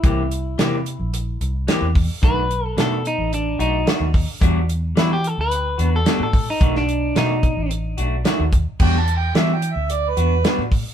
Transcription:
Already playing: clean electric guitar E4
0.03 fingered electric bass C2, clean electric guitar E3 A#3 C4 G4, kick, closed hi-hat
0.31 closed hi-hat
0.58 fingered electric bass C3, clean electric guitar E3 A#3 C4 G4, snare, closed hi-hat
0.86 closed hi-hat
0.99 fingered electric bass A#1
1.13 closed hi-hat
1.41 fingered electric bass C2, closed hi-hat
1.67 clean electric guitar E3 A#3 C4 G4, snare, closed hi-hat
1.81 fingered electric bass E2
1.95 kick, open hi-hat
2.22 fingered electric bass B1, clean electric guitar D#3 A3 D4 F#4 B4, kick, closed hi-hat
2.51 closed hi-hat
2.66 clean electric guitar A4
2.77 fingered electric bass B2, clean electric guitar D#3 A3 D4 F#4 A4, snare, closed hi-hat
3.05 clean electric guitar D#4, closed hi-hat
3.18 fingered electric bass A1
3.33 clean electric guitar D4, closed hi-hat
3.59 fingered electric bass B1, clean electric guitar A3 D4 D#4 F#4, closed hi-hat
3.86 clean electric guitar D#3 A3 D4 F#4, snare, closed hi-hat
4.00 fingered electric bass D#2
4.14 kick, open hi-hat
4.41 fingered electric bass E2, clean electric guitar G3 B3 D4 F#4, kick, closed hi-hat
4.69 closed hi-hat
4.96 fingered electric bass E3, clean electric guitar G3 B3 D4 E4 F#4, snare, closed hi-hat
5.13 clean electric guitar G4
5.24 clean electric guitar A4, closed hi-hat
5.38 fingered electric bass D2, clean electric guitar B4
5.51 closed hi-hat
5.78 fingered electric bass E2, clean electric guitar B3 D4 F#4, closed hi-hat
5.96 clean electric guitar A4
6.05 clean electric guitar G3 B3 D4 F#4, snare, closed hi-hat
6.20 fingered electric bass A2, clean electric guitar A4
6.33 kick, open hi-hat
6.50 clean electric guitar D#4
6.60 fingered electric bass B1, clean electric guitar D#3 A3 D4 F#4, kick, closed hi-hat
6.75 clean electric guitar D4, snare
6.88 closed hi-hat
7.15 fingered electric bass B2, clean electric guitar D#3 A3 D4 D#4 F#4, snare, closed hi-hat
7.43 kick, closed hi-hat
7.57 fingered electric bass A1
7.71 closed hi-hat
7.98 fingered electric bass B1, clean electric guitar A3 D4 F#4, closed hi-hat
8.25 clean electric guitar D#3 A3 D4 F#4, snare, closed hi-hat
8.39 fingered electric bass D#2
8.52 kick, closed hi-hat
8.80 fingered electric bass E2, clean electric guitar G3 B3 D4 F#4, harmonica G5, kick, crash
8.94 snare
8.99 harmonica A5
9.07 closed hi-hat
9.17 harmonica G5
9.35 fingered electric bass E3, clean electric guitar G3 B3 D4 F#4, harmonica E5, snare, closed hi-hat
9.54 harmonica G5
9.62 closed hi-hat
9.72 fingered electric bass D2, harmonica E5
9.89 harmonica D5, closed hi-hat
10.09 harmonica B4
10.17 fingered electric bass E2, clean electric guitar B3 D4 F#4, closed hi-hat
10.44 clean electric guitar G3 B3 D4 F#4, snare, closed hi-hat
10.58 fingered electric bass A2
10.71 kick, open hi-hat

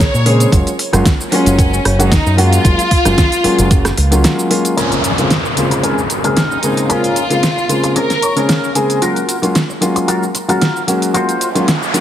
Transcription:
0.00 violin section C#5, snare, closed hi-hat, cabasa
0.14 fingered electric bass A#2, cabasa
0.25 grand piano C#3 G#3 A#3 C4 G#4, open hi-hat
0.40 closed hi-hat, cabasa
0.52 fingered electric bass F#1, grand piano F#3 G#3 A#3 C#4 F4, kick, closed hi-hat, cabasa
0.67 closed hi-hat, cabasa
0.79 open hi-hat
0.93 fingered electric bass F#1, grand piano F#3 G#3 A#3 C#4 F4, cross-stick, closed hi-hat, cabasa
1.06 kick, snare, closed hi-hat, cabasa
1.21 cabasa
1.32 grand piano F#3 G#3 A#3 C#4 F4, violin section C#4, open hi-hat
1.46 fingered electric bass F#1, closed hi-hat, cabasa
1.58 grand piano F#3 G#3 A#3 C#4 F#4, kick, closed hi-hat, cabasa
1.74 cabasa
1.85 fingered electric bass F#1, cross-stick, open hi-hat
1.99 grand piano F#3 G#3 A#3 C#4 F#4, closed hi-hat, cabasa
2.11 violin section D#4, kick, snare, closed hi-hat, cabasa
2.26 fingered electric bass F#2, cabasa
2.37 grand piano F#3 G#3 A#3 C#4 F#4, violin section F4, open hi-hat
2.53 closed hi-hat, cabasa
2.64 fingered electric bass F#1, grand piano F#3 G#3 A#3 C#4 F4, kick, closed hi-hat, cabasa
2.79 closed hi-hat, cabasa
2.91 kick, open hi-hat
3.05 fingered electric bass F#1, grand piano F#3 G#3 A#3 C#4 F4, cross-stick, closed hi-hat, cabasa
3.18 kick, snare, closed hi-hat, cabasa
3.32 closed hi-hat, cabasa
3.44 grand piano F#3 G#3 A#3 C#4 F4, muted fingered electric bass stroke, open hi-hat
3.58 fingered electric bass F#1, closed hi-hat, cabasa
3.70 grand piano F#3 G#3 A#3 C#4 F#4, kick, closed hi-hat, cabasa
3.85 cross-stick, snare, closed hi-hat, cabasa
3.98 fingered electric bass C#2, open hi-hat
4.11 grand piano F#3 G#3 A#3 C#4 F4, closed hi-hat, cabasa
4.24 snare, closed hi-hat, cabasa
4.39 cabasa
4.50 grand piano F#3 G#3 A#3 C#4 F4, open hi-hat
4.65 closed hi-hat, cabasa
4.77 grand piano C#3 G#3 A#3 C4, clean electric guitar C#4 G#4 A#4, closed hi-hat, downlifter, cabasa
4.92 closed hi-hat, cabasa
5.04 closed hi-hat, cabasa
5.18 grand piano C#3 G#3 A#3 C4 F4, closed hi-hat, cabasa
5.30 snare, closed hi-hat, cabasa
5.44 muted clean electric guitar stroke, cabasa
5.57 grand piano C#3 G#3 A#3 C4 F4, closed hi-hat, cabasa
5.71 muted clean electric guitar stroke, closed hi-hat, cabasa
5.83 grand piano C#3 G#3 A#3 C4 G#4, clean electric guitar C#4 G#4 A#4, closed hi-hat, cabasa
5.98 cabasa
6.10 muted clean electric guitar stroke, closed hi-hat, cabasa
6.24 grand piano C#3 G#3 A#3 C4 G#4, clean electric guitar C#4 G#4 A#4, closed hi-hat, cabasa
6.36 violin section D#4, snare, closed hi-hat, cabasa
6.51 cabasa
6.63 grand piano C#3 G#3 A#3 C4 G#4, closed hi-hat, cabasa
6.77 closed hi-hat, cabasa
6.89 grand piano C#3 G#3 A#3 C4 F4, clean electric guitar C#4 G#4 A#4, violin section F4, closed hi-hat, cabasa
7.04 closed hi-hat, cabasa
7.16 closed hi-hat, cabasa
7.30 grand piano C#3 G#3 A#3 C4 F4, closed hi-hat, cabasa
7.43 snare, closed hi-hat, cabasa
7.57 muted clean electric guitar stroke, cabasa
7.68 grand piano C#3 G#3 A#3 C4 F4, closed hi-hat, cabasa
7.83 muted clean electric guitar stroke, closed hi-hat, cabasa
7.95 grand piano C#3 G#3 A#3 C4 G#4, clean electric guitar C#4 G#4 A#4, violin section A#4, closed hi-hat, cabasa
8.10 snare, closed hi-hat, cabasa
8.22 clean electric guitar C#5, muted clean electric guitar stroke, closed hi-hat, cabasa
8.36 grand piano C#3 G#3 A#3 C4 G#4, clean electric guitar C#4 G#4 C#5, closed hi-hat, cabasa
8.49 clean electric guitar F5, snare, closed hi-hat, cabasa
8.64 cabasa
8.75 grand piano C#3 G#3 A#3 C4 G#4, clean electric guitar G#5, closed hi-hat, cabasa
8.90 closed hi-hat, cabasa
9.02 grand piano F#3 G#3 A#3 C#4 F4, clean electric guitar F4 F#4 A#4, closed hi-hat, cabasa
9.16 closed hi-hat, cabasa
9.29 closed hi-hat, cabasa
9.42 grand piano F#3 G#3 A#3 C#4 F4, closed hi-hat, cabasa
9.55 snare, closed hi-hat, cabasa
9.69 muted clean electric guitar stroke, cabasa
9.81 grand piano F#3 G#3 A#3 C#4 F4, closed hi-hat, cabasa
9.95 muted clean electric guitar stroke, closed hi-hat, cabasa
10.08 grand piano F#3 G#3 A#3 C#4 F#4, clean electric guitar F4 F#4 A#4, closed hi-hat, cabasa
10.23 cabasa
10.35 muted clean electric guitar stroke, closed hi-hat, cabasa
10.48 grand piano F#3 G#3 A#3 C#4 F#4, clean electric guitar F4 F#4 A#4, closed hi-hat, cabasa
10.62 snare, closed hi-hat, cabasa
10.76 cabasa
10.87 grand piano F#3 G#3 A#3 C#4 F#4, closed hi-hat, cabasa
11.02 closed hi-hat, cabasa
11.14 grand piano F#3 G#3 A#3 C#4 F4, clean electric guitar F4 F#4 C5, closed hi-hat, noise sweep, cabasa
11.29 closed hi-hat, cabasa
11.41 closed hi-hat, cabasa
11.55 grand piano F#3 G#3 A#3 C#4 F4, closed hi-hat, cabasa
11.68 snare, closed hi-hat, cabasa
11.81 muted clean electric guitar stroke, cabasa
11.93 grand piano F#3 G#3 A#3 C#4 F4, closed hi-hat, cabasa

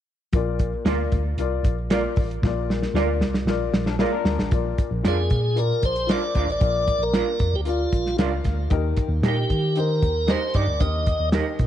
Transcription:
0.33 tine electric piano A#1, upright piano A#2 F4 A#4 D5, kick, closed hi-hat
0.59 kick, closed hi-hat
0.85 tine electric piano D2, clean electric guitar A#3 F4 A#4 D5, upright piano F4 A#4 D5, snare, closed hi-hat
1.12 tine electric piano D2, kick, closed hi-hat
1.38 tine electric piano C2, upright piano F4 A#4 D5, closed hi-hat
1.64 tine electric piano A#1, kick, closed hi-hat
1.90 clean electric guitar A#3 F4 A#4 D5, upright piano F4 A#4 D5, snare, closed hi-hat
2.16 tine electric piano A1, kick, open hi-hat
2.31 closed hi-hat
2.43 tine electric piano A#1, upright piano A#2 F4 A#4 D5, kick, snare
2.70 snare
2.82 snare
2.94 tine electric piano D2, clean electric guitar A#3 F4 A#4 D5, upright piano F4 A#4 D5, snare
3.20 tine electric piano C2, snare
3.34 snare
3.46 tine electric piano A#1, upright piano F4 A#4 D5, snare
3.72 tine electric piano A#1, snare
3.86 clean electric guitar F3 D4, snare
3.99 clean electric guitar G#3 A#3 F4 A#4 D5, upright piano F4 A#4 D5, snare
4.13 clean electric guitar D4 A#4
4.25 tine electric piano D2, snare
4.39 tine electric piano A1, snare
4.51 tine electric piano A#1, upright piano A#2 F4 A#4 D5, kick, closed hi-hat
4.78 kick, closed hi-hat
4.91 tine electric piano A#1
5.03 tine electric piano F2, clean electric guitar D4 F4 A#4 D5, upright piano F4 A#4 D5, snare, closed hi-hat
5.08 tonewheel organ G#4
5.30 tine electric piano A#2, kick, closed hi-hat
5.55 upright piano F4 A#4 D5, tonewheel organ A#4, closed hi-hat
5.83 tine electric piano A#1, tonewheel organ C5, kick, closed hi-hat
5.96 closed hi-hat
6.07 clean electric guitar D4 F4 A#4, upright piano F4 A#4 C5, snare, closed hi-hat
6.11 clean electric guitar D5, tonewheel organ D5
6.35 tine electric piano D2, clean electric guitar D4 F4 A#4 D5, kick, closed hi-hat
6.46 tine electric piano A1, closed hi-hat
6.52 tonewheel organ D5
6.60 tine electric piano A#1, upright piano A#2 F4 A#4 D5, kick, closed hi-hat
6.87 kick, closed hi-hat
7.00 tine electric piano A#1, tonewheel organ A#4
7.13 clean electric guitar D4 F4 A#4 D5, upright piano F4 A#4 D5, snare, closed hi-hat
7.39 tine electric piano F2, kick, closed hi-hat
7.54 tine electric piano D2, tonewheel organ G4
7.65 upright piano F4 A#4 D5, tonewheel organ F4, closed hi-hat
7.93 tine electric piano A#1, kick, closed hi-hat
8.06 snare
8.17 tine electric piano C#2, clean electric guitar D4 F4 A#4 D5, upright piano F4 A#4 F5, snare, closed hi-hat
8.44 tine electric piano D2, kick, snare, closed hi-hat
8.70 tine electric piano D#2, upright piano D#3 D#4 G4 A#4, kick, closed hi-hat
8.97 kick, closed hi-hat
9.09 tine electric piano D#2
9.22 tine electric piano A#2, upright piano D#4 G4 A#4, clean electric guitar D#4 G4 A#4 D#5, snare, closed hi-hat
9.29 tonewheel organ G4
9.50 tine electric piano D#3, kick, closed hi-hat
9.76 upright piano D#4 G4 C5, closed hi-hat
9.80 tonewheel organ A#4
10.03 tine electric piano D#2, kick, closed hi-hat
10.27 upright piano D#4 G4 C5, clean electric guitar D#4 G4 A#4 D#5, tonewheel organ C5, snare, closed hi-hat
10.54 tine electric piano G2, clean electric guitar D#4 G4 A#4 D#5, tonewheel organ D5, kick, closed hi-hat
10.67 tine electric piano D2
10.79 tine electric piano D#2, upright piano D#3 D#4 G4 A#4, tonewheel organ D#5, kick, closed hi-hat
11.06 kick, closed hi-hat
11.19 tine electric piano D#2
11.32 upright piano D#4 G4 A#4, clean electric guitar D#4 G4 A#4 D#5, snare, closed hi-hat
11.59 tine electric piano A#2, kick, closed hi-hat

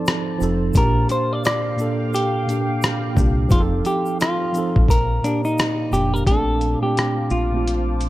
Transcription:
Already playing: tine electric piano F3 C4 D#4 A4, ambient pad C5 F5 A5, clean electric guitar D5
0.06 cross-stick, closed hi-hat, shaker
0.38 fingered electric bass F1, tine electric piano F3 C4 D#4, shaker
0.43 tine electric piano A4
0.73 fingered electric bass A#1, tine electric piano A#2 A#3 D4, ambient pad A#3 F5 G5 D6, kick, closed hi-hat, shaker
0.78 tine electric piano G4, clean electric guitar A#4
1.09 clean electric guitar C5, closed hi-hat, shaker
1.33 clean electric guitar D5
1.44 clean electric guitar D5, cross-stick, closed hi-hat, shaker
1.76 tine electric piano A#2 A#3 D4, shaker
1.81 tine electric piano A4
2.14 clean electric guitar G4, closed hi-hat, shaker
2.46 tine electric piano A#2 A#3 D4, closed hi-hat, shaker
2.52 tine electric piano G4
2.82 cross-stick, closed hi-hat, shaker
3.15 fingered electric bass C2, tine electric piano A#2 A#3 D4, kick, shaker
3.20 tine electric piano G4
3.49 fingered electric bass F1, tine electric piano F3 C4 D#4, clean electric guitar F4, ambient pad C5 F5 A5 D#6, kick, closed hi-hat, shaker
3.54 tine electric piano G#4
3.61 tine electric piano A4
3.85 clean electric guitar G4, closed hi-hat, shaker
4.06 shaker
4.20 clean electric guitar F4, cross-stick, closed hi-hat, shaker
4.53 tine electric piano F3 C4 D#4, shaker
4.58 tine electric piano A4
4.76 fingered electric bass A1, kick
4.88 fingered electric bass A#1, ambient pad A#4 F5 G5 D6, clean electric guitar A#4, kick, closed hi-hat, shaker
5.22 tine electric piano A#2 A#3 D5, clean electric guitar D4, closed hi-hat, shaker
5.27 tine electric piano G4
5.45 clean electric guitar D#4, shaker
5.58 cross-stick, closed hi-hat, shaker
5.91 fingered electric bass F1, tine electric piano A#2 A#3 D4, clean electric guitar G4, shaker
5.96 tine electric piano G4
6.14 clean electric guitar A#4, shaker
6.26 fingered electric bass A#1, tine electric piano A#2 A3 C4, clean electric guitar A4, ambient pad C5 F5 A5 D6, kick, closed hi-hat
6.31 tine electric piano D4
6.61 closed hi-hat, shaker
6.81 tine electric piano A#2 A3 C4, clean electric guitar G4
6.86 tine electric piano D4
6.97 cross-stick, closed hi-hat
7.30 fingered electric bass A#1, clean electric guitar F4, shaker
7.51 tine electric piano A#2 A3 C4
7.57 tine electric piano F4
7.68 closed hi-hat
8.01 closed hi-hat, shaker

